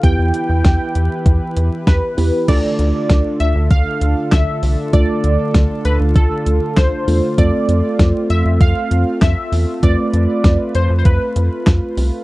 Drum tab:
CC |--------|x-------|--------|--------|
HH |xxxxxxxo|xxxxxxxo|xxxxxxxo|xxxxxxxo|
CP |--------|------x-|------x-|------x-|
SD |--o---o-|--o---o-|--o---o-|--o---o-|
BD |o-o-o-o-|o-o-o-o-|o-o-o-o-|o-o-o-o-|

CC |--------|
HH |xxxxxxxo|
CP |------x-|
SD |--o---o-|
BD |o-o-o-o-|